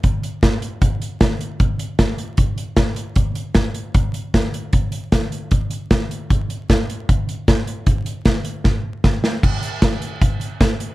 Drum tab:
CC |--------|--------|--------|--------|
HH |xxxxxxxx|xxxxxxxx|xxxxxxxx|xxxxxxxx|
SD |--o---o-|--o---o-|--o---o-|--o---o-|
BD |o-o-o-o-|o-o-o-o-|o-o-o-o-|o-o-o-o-|

CC |--------|--------|x-------|
HH |xxxxxxxx|xxxx----|-xxxxxxx|
SD |--o---o-|--o-o-oo|--o---o-|
BD |o-o-o-o-|o-o-o-o-|o-o-o-o-|